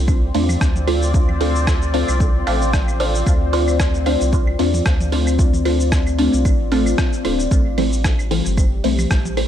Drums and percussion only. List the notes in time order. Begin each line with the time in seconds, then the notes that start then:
0.08 kick, claves, shaker
0.34 open hi-hat
0.49 mid tom, claves, shaker
0.61 kick, cross-stick, shaker
0.76 mid tom, shaker
0.87 open hi-hat, claves
1.02 shaker
1.14 kick, shaker
1.29 mid tom, claves
1.41 open hi-hat
1.55 shaker
1.67 kick, cross-stick, claves, shaker
1.82 shaker
1.94 open hi-hat
2.09 claves, shaker
2.20 kick, shaker
2.47 open hi-hat, claves
2.62 shaker
2.73 kick, cross-stick, shaker
2.88 claves, shaker
3.00 open hi-hat
3.15 shaker
3.27 kick, claves, shaker
3.53 open hi-hat
3.68 claves, shaker
3.80 kick, cross-stick, shaker
3.94 shaker
4.06 open hi-hat, claves
4.21 shaker
4.33 kick, shaker
4.47 claves
4.59 open hi-hat
4.74 mid tom, shaker
4.86 kick, cross-stick, claves, shaker
5.00 mid tom, shaker
5.12 open hi-hat
5.27 claves, shaker
5.39 kick, shaker
5.54 mid tom, shaker
5.65 open hi-hat, claves
5.80 shaker
5.92 kick, cross-stick, shaker
6.07 claves, shaker
6.19 open hi-hat
6.33 shaker
6.45 kick, claves, shaker
6.72 open hi-hat
6.86 claves, shaker
6.98 kick, cross-stick, shaker
7.13 shaker
7.25 open hi-hat, claves
7.39 shaker
7.51 kick, shaker
7.78 open hi-hat, claves
7.93 shaker
8.04 kick, cross-stick, shaker
8.19 claves, shaker
8.31 open hi-hat
8.46 shaker
8.57 kick, claves, shaker
8.84 open hi-hat
8.99 mid tom, claves, shaker
9.11 kick, cross-stick, shaker
9.25 mid tom, shaker
9.37 open hi-hat, claves